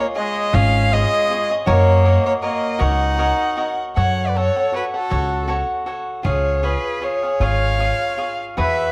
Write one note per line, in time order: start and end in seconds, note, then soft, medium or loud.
0.00 0.14 F4 medium
0.00 0.15 G#4 medium
0.00 0.16 C#5 medium
0.00 0.16 D#5 medium
0.15 0.56 G#3 medium
0.15 0.52 F4 soft
0.15 0.54 G#4 medium
0.15 0.54 C#5 soft
0.15 0.56 D#5 medium
0.15 0.54 D#5 medium
0.53 1.03 G#1 loud
0.53 0.95 C#4 medium
0.53 0.91 F4 medium
0.53 0.92 G#4 medium
0.53 0.94 C#5 medium
0.53 0.94 D#5 medium
0.53 0.95 F5 loud
0.92 1.50 G#3 medium
0.92 1.29 F4 medium
0.92 1.30 G#4 medium
0.92 1.31 C#5 medium
0.92 1.50 D#5 loud
0.92 1.32 D#5 medium
1.30 1.49 F4 soft
1.30 1.50 G#4 medium
1.30 1.50 C#5 soft
1.30 1.49 D#5 medium
1.50 1.67 G#4 soft
1.50 1.66 C#5 medium
1.50 1.67 D#5 soft
1.66 2.16 F#2 loud
1.66 2.03 F#4 medium
1.66 2.04 A#4 medium
1.66 2.19 C#5 medium
1.66 2.05 C#5 loud
1.66 2.05 D#5 medium
1.71 2.22 A#3 medium
2.04 2.42 F#4 medium
2.04 2.41 A#4 medium
2.04 2.43 C#5 medium
2.04 2.43 D#5 medium
2.25 2.34 A#3 medium
2.25 2.33 C#5 loud
2.42 2.84 A#3 medium
2.42 2.78 F#4 soft
2.42 2.78 A#4 medium
2.42 2.79 C#5 medium
2.42 2.82 D#5 medium
2.42 2.78 D#5 medium
2.79 3.31 C#2 medium
2.79 3.80 D#4 medium
2.79 3.18 F#4 medium
2.79 3.17 A#4 medium
2.79 3.18 C#5 medium
2.79 3.18 D#5 medium
2.79 3.79 F#5 medium
3.18 3.56 F#4 medium
3.18 3.56 A#4 medium
3.18 3.57 C#5 medium
3.18 3.57 D#5 medium
3.57 3.96 F#4 medium
3.57 3.96 A#4 medium
3.57 3.96 C#5 medium
3.57 3.97 D#5 medium
3.96 4.47 F#2 medium
3.96 4.34 F#4 medium
3.96 4.35 A4 medium
3.96 4.36 C#5 medium
3.96 4.31 C#5 medium
3.96 4.28 F#5 medium
3.96 4.36 F#5 medium
4.27 4.38 B4 soft
4.27 4.38 D5 medium
4.35 4.56 F#4 soft
4.35 4.56 A4 medium
4.35 4.75 A4 medium
4.35 4.55 C#5 medium
4.35 4.75 C#5 medium
4.35 4.55 F#5 medium
4.56 4.72 A4 soft
4.56 4.72 C#5 soft
4.56 4.73 F#5 soft
4.72 4.93 F#4 soft
4.72 4.94 A4 soft
4.72 4.84 B4 medium
4.72 4.93 C#5 medium
4.72 4.93 F#5 soft
4.76 4.85 F#4 medium
4.94 5.46 A4 medium
4.94 5.09 A4 soft
4.94 5.10 C#5 soft
4.94 5.10 F#5 soft
4.98 5.48 F#4 medium
5.10 5.61 C#2 loud
5.10 5.46 F#4 medium
5.10 5.47 A4 medium
5.10 5.49 C#5 medium
5.10 5.48 F#5 medium
5.48 5.85 F#4 medium
5.48 5.85 A4 medium
5.48 5.87 C#5 medium
5.48 5.87 F#5 medium
5.86 6.23 F#4 medium
5.86 6.24 A4 medium
5.86 6.24 C#5 medium
5.86 6.24 F#5 medium
6.23 6.75 C#2 loud
6.23 6.62 F4 medium
6.23 6.62 G#4 medium
6.23 6.64 G#4 medium
6.23 6.62 C#5 medium
6.23 6.66 C#5 medium
6.23 6.62 F5 medium
6.63 7.00 F4 medium
6.63 7.01 G#4 medium
6.63 7.02 G#4 medium
6.63 7.05 B4 medium
6.63 7.01 C#5 medium
6.63 7.02 F5 medium
7.01 7.22 F4 soft
7.01 7.44 G#4 medium
7.01 7.22 G#4 medium
7.01 7.22 C#5 soft
7.01 7.44 C#5 medium
7.01 7.22 F5 soft
7.23 7.40 G#4 soft
7.23 7.40 C#5 soft
7.23 7.40 F5 soft
7.40 7.91 G#1 medium
7.40 7.77 F4 medium
7.40 7.80 G#4 medium
7.40 7.79 C#5 medium
7.40 8.40 C#5 medium
7.40 7.79 F5 medium
7.40 8.40 F5 medium
7.79 8.16 F4 medium
7.79 8.18 G#4 medium
7.79 8.17 C#5 soft
7.79 8.17 F5 medium
8.17 8.57 F4 soft
8.17 8.57 G#4 medium
8.17 8.57 C#5 medium
8.17 8.58 F5 soft
8.57 8.92 E2 medium
8.57 8.92 F#4 medium
8.57 8.92 G#4 medium
8.57 8.92 B4 medium
8.57 8.92 E5 medium